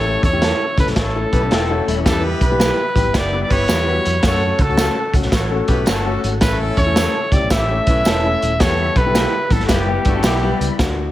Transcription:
Already playing: fingered electric bass A1, grand piano A3 C#4 E4 G4, horn section A3 C#4 E4 A4, tonewheel organ A4 C#5 E5, trumpet C#5
0.23 fingered electric bass E2, trumpet C#5, kick, closed hi-hat
0.32 grand piano A3 C#4 E4 G4, horn section C#4 E4 A4 C#5
0.42 clean electric guitar C#4 E4 A4, snare, closed hi-hat
0.78 fingered electric bass C#2, grand piano A3 C#4 E4 A4, trumpet B4, kick, closed hi-hat
0.87 fingered electric bass B1, snare, closed hi-hat
0.95 fingered electric bass A1, horn section C#4 E4 A4 C#5, kick, snare, closed hi-hat
0.99 trumpet A4
1.15 grand piano A3 C#4 E4 A4
1.31 fingered electric bass B1, horn section B3 E4 G4 B4, clean electric guitar B4, kick, closed hi-hat
1.42 clean electric guitar C#4 A4
1.51 fingered electric bass E1, horn section A3 C#4 E4 A4, clean electric guitar B3 C#4 E4 G4 A4, snare, closed hi-hat
1.69 clean electric guitar A3 F#4, grand piano A3 C#4 E4 A4
1.88 fingered electric bass D#1, clean electric guitar G3 E4, closed hi-hat
1.97 clean electric guitar E3 C#4
2.05 fingered electric bass E2, grand piano G3 B3 E4 G4, horn section B3 E4 G4 B4, tonewheel organ G4 B4 B5, trumpet A4, kick, snare, closed hi-hat, tambourine
2.41 fingered electric bass B1, trumpet B4, kick, closed hi-hat
2.51 grand piano G3 B3 E4 G4
2.60 clean electric guitar G3 B3 E4, snare, closed hi-hat, tambourine
2.95 fingered electric bass A1, grand piano G3 B3 E4 G4, kick, closed hi-hat
3.06 fingered electric bass G1
3.14 fingered electric bass F#1, horn section G3 B3 E4 G4, trumpet D5, kick, snare, closed hi-hat, tambourine
3.33 grand piano G3 B3 E4 G4
3.42 trumpet D5
3.50 fingered electric bass G1, horn section B3 E4 G4 B4, trumpet C#5, kick, closed hi-hat
3.68 fingered electric bass E2, clean electric guitar G3 B3 E4, snare, closed hi-hat, tambourine
3.87 grand piano G3 B3 E4 F#4
4.05 fingered electric bass F2, closed hi-hat
4.22 fingered electric bass F#2, grand piano A3 C#4 F#4 A4, horn section A3 C#4 F#4 A4, tonewheel organ A4 C#5 F#5, kick, snare, closed hi-hat, tambourine
4.27 trumpet C#5
4.59 fingered electric bass C#2, trumpet A4, kick, closed hi-hat
4.69 grand piano A3 C#4 F#4 A4, horn section A3 C#4 F#4 A4
4.77 clean electric guitar C#4 F#4 A4, snare, closed hi-hat, tambourine
5.14 fingered electric bass C#2, grand piano A3 C#4 F#4 A4, kick, closed hi-hat
5.22 fingered electric bass B1, snare
5.32 fingered electric bass A1, horn section C#4 F#4 A4 C#5, kick, snare, closed hi-hat, tambourine
5.50 grand piano A3 C#4 F#4 A4
5.68 fingered electric bass B1, horn section B3 E4 G4 B4, kick, closed hi-hat
5.86 fingered electric bass G1, horn section A3 C#4 F#4 A4, clean electric guitar C#4 F#4 A4, snare, closed hi-hat, tambourine
6.05 grand piano A3 C#4 F#4 A4
6.24 fingered electric bass G#1, closed hi-hat
6.41 fingered electric bass A1, grand piano A3 C#4 E4 A4, horn section A3 C#4 E4 A4, trumpet B4, tonewheel organ E5, kick, snare, closed hi-hat, tambourine
6.77 fingered electric bass E2, trumpet C#5, kick, closed hi-hat
6.86 grand piano A3 C#4 E4 A4
6.96 clean electric guitar C#4 E4 A4, snare, closed hi-hat, tambourine
7.32 fingered electric bass C#2, grand piano A3 C#4 E4 G4, trumpet D5, kick, closed hi-hat
7.42 fingered electric bass B1
7.50 fingered electric bass A1, horn section G3 C#4 E4 G4, trumpet E5, kick, snare, closed hi-hat, tambourine
7.69 grand piano A3 C#4 E4 A4
7.87 fingered electric bass B1, horn section B3 C#4 E4 B4, kick, closed hi-hat
8.05 fingered electric bass E1, clean electric guitar C#4 E4 A4, snare, closed hi-hat, tambourine
8.23 grand piano A3 C#4 E4 A4
8.42 fingered electric bass D#1, closed hi-hat
8.60 fingered electric bass E2, grand piano G3 B3 E4 G4, horn section A3 B3 E4 A4, tonewheel organ G4 B4 B5, trumpet C#5, kick, snare, closed hi-hat, tambourine
8.96 fingered electric bass B1, trumpet B4, kick, closed hi-hat
9.06 grand piano G3 B3 E4 G4, horn section A3 B3 E4 A4
9.15 clean electric guitar E4 G4 B4, snare, closed hi-hat, tambourine
9.50 fingered electric bass A1, grand piano G3 B3 E4 A4, trumpet A4, kick, closed hi-hat
9.60 fingered electric bass G1, snare
9.66 fingered electric bass F#1, horn section B3 E4 G4 B4, trumpet F#4, kick, snare, closed hi-hat, tambourine
9.70 clean electric guitar G3 E4, trumpet G4
9.88 grand piano G3 B3 E4 G4, clean electric guitar B3 G4
10.05 fingered electric bass G1, horn section A3 D4 F#4 A4, kick, closed hi-hat
10.16 clean electric guitar C#4 A4
10.23 fingered electric bass B1, horn section G3 B3 E4 G4, clean electric guitar B3 E4 G4 B4, snare, closed hi-hat, tambourine
10.43 clean electric guitar G3 E4, grand piano G3 B3 E4 G4
10.60 fingered electric bass C#2, closed hi-hat
10.79 fingered electric bass D2, grand piano A3 D4 F#4, kick, snare, closed hi-hat, tambourine

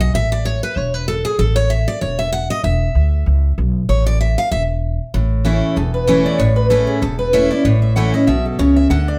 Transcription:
0.00 steel-string acoustic guitar D#5
0.14 upright bass A1, steel-string acoustic guitar E5
0.32 steel-string acoustic guitar D5
0.45 steel-string acoustic guitar C#5
0.63 steel-string acoustic guitar B4
0.76 upright bass E1, steel-string acoustic guitar C#5
0.94 steel-string acoustic guitar B4
1.08 steel-string acoustic guitar A4
1.25 steel-string acoustic guitar G#4
1.39 upright bass A1, steel-string acoustic guitar A4
1.56 steel-string acoustic guitar C#5
1.70 steel-string acoustic guitar E5
1.88 steel-string acoustic guitar D5
2.01 upright bass E1, steel-string acoustic guitar C#5
2.19 steel-string acoustic guitar E5
2.32 steel-string acoustic guitar F#5
2.50 steel-string acoustic guitar D#5
2.64 upright bass E1, steel-string acoustic guitar E5
2.95 upright bass D2
3.26 upright bass C#2
3.58 upright bass B1
3.89 upright bass A1, steel-string acoustic guitar C#5
4.06 steel-string acoustic guitar D5
4.21 steel-string acoustic guitar E5
4.38 steel-string acoustic guitar F5
4.51 upright bass E1, steel-string acoustic guitar E5
5.14 upright bass A1, steel-string acoustic guitar A2
5.45 steel-string acoustic guitar E3 A3 C#4 E4
5.76 upright bass E1, steel-string acoustic guitar E2 A4
5.94 steel-string acoustic guitar B4
6.07 steel-string acoustic guitar E3 A3 C#4 E4 C#5
6.26 steel-string acoustic guitar D5
6.39 upright bass A1, steel-string acoustic guitar A2 C#5
6.56 steel-string acoustic guitar B4
6.70 steel-string acoustic guitar E3 A3 C#4 E4 A4
6.87 steel-string acoustic guitar G#4
7.02 upright bass E1, steel-string acoustic guitar E2 A4
7.19 steel-string acoustic guitar B4
7.33 steel-string acoustic guitar E3 A3 C#4 E4 C#5
7.51 steel-string acoustic guitar C#4 E4 D5
7.65 upright bass A1, steel-string acoustic guitar A2 C#5
7.82 steel-string acoustic guitar E5
7.96 steel-string acoustic guitar E3 A3 C#4 E4 F#5
8.13 steel-string acoustic guitar C#4 E4 D#5
8.27 upright bass B1, steel-string acoustic guitar B2 E5
8.46 steel-string acoustic guitar A4
8.59 upright bass C#2, steel-string acoustic guitar C#3 C#5
8.76 steel-string acoustic guitar E5
8.90 upright bass D2, steel-string acoustic guitar D3 F#5
9.08 steel-string acoustic guitar D5

